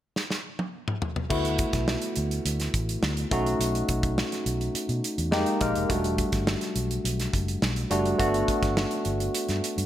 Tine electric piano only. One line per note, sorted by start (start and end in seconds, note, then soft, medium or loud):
1.30 2.11 A3 medium
1.30 2.11 B3 medium
1.30 2.11 E4 medium
1.30 2.12 F#4 medium
3.31 4.23 A3 medium
3.31 4.23 C#4 medium
3.31 4.23 D#4 medium
3.31 4.24 F#4 medium
5.31 5.55 G#3 medium
5.31 5.55 A#3 medium
5.31 5.55 D#4 medium
5.31 5.56 G4 medium
5.60 5.81 G#3 medium
5.60 5.81 A#3 medium
5.60 5.81 D#4 medium
5.60 5.82 A#4 medium
5.89 6.70 G3 medium
5.89 6.70 A3 medium
5.89 6.71 D4 medium
5.89 6.71 F#4 medium
7.90 8.11 G3 medium
7.90 8.11 A3 medium
7.90 8.11 D4 medium
7.90 8.11 F#4 medium
8.19 9.00 A3 medium
8.19 9.00 B3 medium
8.19 9.00 D4 medium
8.19 9.01 F#4 medium